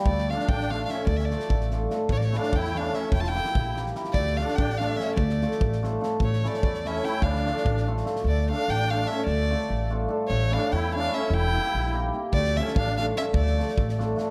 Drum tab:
SD |-ooo-oo-o-|-ooo-oo-o-|-ooo-oo-o-|-ooo--oooo|
BD |o---o-----|o---o-----|o---o-----|o---o-----|

SD |-ooo-oo-o-|-ooo-oo-o-|-ooo-oo-o-|-ooo-o-ooo|
BD |o---o-----|o---o-----|o---o-----|o---o-----|

SD |----------|----------|----------|----------|
BD |----------|----------|----------|----------|

SD |-ooo-oo-o-|-ooo-oo-o-|
BD |o---o-----|o---o-----|